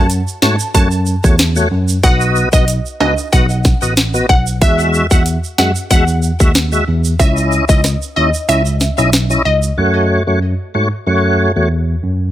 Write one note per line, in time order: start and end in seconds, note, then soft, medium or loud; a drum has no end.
0.00 0.21 F#2 medium
0.10 closed hi-hat medium
0.10 shaker medium
0.28 shaker medium
0.42 0.56 G#2 medium
0.42 0.56 A3 medium
0.42 0.56 F#4 medium
0.42 0.56 C#5 medium
0.42 0.56 A5 medium
0.42 snare loud
0.60 shaker medium
0.74 1.14 F#2 loud
0.74 0.88 A3 medium
0.74 0.88 F#4 medium
0.74 0.88 C#5 loud
0.74 1.21 A5 loud
0.74 kick loud
0.74 closed hi-hat medium
0.74 shaker medium
0.91 shaker soft
1.06 shaker medium
1.24 1.62 E2 loud
1.24 1.36 A3 medium
1.24 1.36 F#4 medium
1.24 1.36 C#5 medium
1.24 kick loud
1.24 shaker medium
1.39 snare loud
1.39 closed hi-hat medium
1.39 shaker medium
1.56 1.68 A3 medium
1.56 1.68 F#4 medium
1.56 1.68 C#5 medium
1.56 shaker medium
1.71 1.97 F#2 medium
1.88 shaker medium
2.03 2.43 B1 loud
2.03 2.49 B3 medium
2.03 2.49 F#4 medium
2.03 2.49 D#5 loud
2.03 2.17 F#5 loud
2.03 kick loud
2.03 closed hi-hat medium
2.03 shaker medium
2.21 shaker soft
2.36 shaker medium
2.53 2.79 B1 medium
2.53 2.65 B3 medium
2.53 2.65 F#4 medium
2.53 2.65 D#5 medium
2.53 kick loud
2.53 shaker medium
2.68 closed hi-hat medium
2.68 shaker medium
2.86 shaker soft
3.00 3.14 C#2 medium
3.00 3.14 B3 medium
3.00 3.14 F#4 medium
3.00 3.14 D#5 medium
3.00 high timbale medium
3.18 shaker medium
3.32 3.72 B1 loud
3.32 3.46 B3 medium
3.32 3.46 F#4 medium
3.32 3.46 D#5 loud
3.32 3.79 F#5 medium
3.32 kick loud
3.32 closed hi-hat medium
3.32 shaker medium
3.50 shaker soft
3.64 kick loud
3.64 snare medium
3.64 shaker medium
3.82 4.20 A1 medium
3.82 3.94 B3 medium
3.82 3.94 F#4 medium
3.82 3.94 D#5 medium
3.82 shaker medium
3.97 snare loud
3.97 closed hi-hat medium
3.97 shaker medium
4.14 4.26 B3 medium
4.14 4.26 F#4 medium
4.14 4.26 D#5 medium
4.14 shaker medium
4.29 4.62 B1 medium
4.29 4.43 F#5 medium
4.29 kick medium
4.47 shaker medium
4.61 5.01 E2 loud
4.61 5.07 G#3 loud
4.61 5.07 F#4 medium
4.61 4.75 E5 loud
4.61 5.07 E5 loud
4.61 kick loud
4.61 closed hi-hat medium
4.61 shaker medium
4.79 shaker medium
4.94 shaker medium
5.11 5.37 E2 loud
5.11 5.23 G#3 medium
5.11 5.23 F#4 medium
5.11 5.23 E5 medium
5.11 5.23 F#5 medium
5.11 kick loud
5.11 shaker medium
5.26 closed hi-hat medium
5.26 shaker medium
5.44 shaker soft
5.58 5.72 F#2 medium
5.58 5.72 G#3 medium
5.58 5.72 F#4 medium
5.58 5.72 E5 medium
5.58 5.72 F#5 medium
5.58 snare loud
5.76 shaker medium
5.90 6.30 E2 loud
5.90 6.04 G#3 medium
5.90 6.04 F#4 medium
5.90 6.04 E5 loud
5.90 6.37 F#5 loud
5.90 kick loud
5.90 closed hi-hat medium
5.90 shaker medium
6.08 shaker medium
6.23 shaker medium
6.40 6.78 D#2 medium
6.40 6.52 G#3 medium
6.40 6.52 F#4 medium
6.40 6.52 E5 medium
6.40 kick loud
6.40 shaker medium
6.55 snare loud
6.55 closed hi-hat medium
6.55 shaker medium
6.72 6.84 G#3 medium
6.72 6.84 F#4 medium
6.72 6.85 E5 medium
6.72 shaker medium
6.87 7.13 E2 medium
7.05 shaker medium
7.19 7.59 C#2 loud
7.19 7.65 C#4 loud
7.19 7.65 E4 medium
7.19 7.65 D#5 loud
7.19 7.33 E5 loud
7.19 kick loud
7.19 closed hi-hat medium
7.19 shaker medium
7.37 shaker medium
7.52 shaker medium
7.69 7.95 C#2 loud
7.69 7.81 C#4 medium
7.69 7.81 E4 medium
7.69 7.81 D#5 medium
7.69 kick loud
7.69 shaker medium
7.84 cross-stick medium
7.84 snare medium
7.84 closed hi-hat medium
7.84 shaker medium
8.02 shaker soft
8.16 8.30 D#2 loud
8.16 8.30 C#4 medium
8.16 8.30 E4 medium
8.16 8.30 D#5 medium
8.34 shaker medium
8.48 8.88 C#2 loud
8.48 8.62 C#4 medium
8.48 8.62 E4 medium
8.48 8.62 D#5 loud
8.48 8.95 E5 medium
8.48 closed hi-hat medium
8.48 shaker medium
8.66 shaker soft
8.81 snare medium
8.81 shaker medium
8.98 9.36 B1 medium
8.98 9.10 C#4 medium
8.98 9.10 E4 medium
8.98 9.10 D#5 medium
8.98 shaker medium
9.13 snare loud
9.13 closed hi-hat medium
9.13 shaker medium
9.30 9.42 C#4 medium
9.30 9.42 E4 medium
9.30 9.43 D#5 medium
9.30 shaker medium
9.45 9.71 C#2 medium
9.45 9.59 D#5 medium
9.63 shaker medium
9.78 10.17 F#2 loud
9.78 10.23 A3 medium
9.78 10.23 F#4 medium
9.78 10.23 C#5 medium
10.27 10.53 F#2 medium
10.27 10.39 A3 medium
10.27 10.39 F#4 medium
10.27 10.39 C#5 medium
10.74 10.88 G#2 medium
10.74 10.88 A3 medium
10.74 10.88 F#4 medium
10.74 10.88 C#5 medium
11.07 11.46 F#2 loud
11.07 11.52 A3 medium
11.07 11.52 F#4 medium
11.07 11.52 C#5 medium
11.56 11.94 E2 medium
11.56 11.68 A3 medium
11.56 11.68 F#4 medium
11.56 11.68 C#5 medium
12.03 12.29 F#2 medium